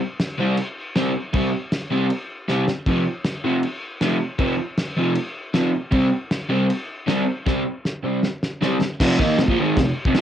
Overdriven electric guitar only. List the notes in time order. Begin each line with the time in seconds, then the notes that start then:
0.38 C3 G3 C4
0.96 C3 G3 C4
1.34 C3 G3 C4
1.91 C3 G3 C4
2.49 C3 G3 C4
2.87 F2 C3 F3
3.44 F2 C3 F3
4.01 F2 C3 F3
4.39 F2 C3 F3
4.97 F2 C3 F3
5.54 F2 C3 F3
5.91 C3 G3 C4
6.49 C3 G3 C4
7.07 C3 G3 C4
7.46 C3 G3 C4
8.04 C3 G3 C4
8.62 C3 G3 C4
9.00 F2 C3 F3
9.19 D#3 A#3 D#4
9.39 F2 C3
9.49 A#2 F3
9.59 G#2 D#3 G#3
9.78 F2 C3
10.06 F2 C3
10.16 A#2 F3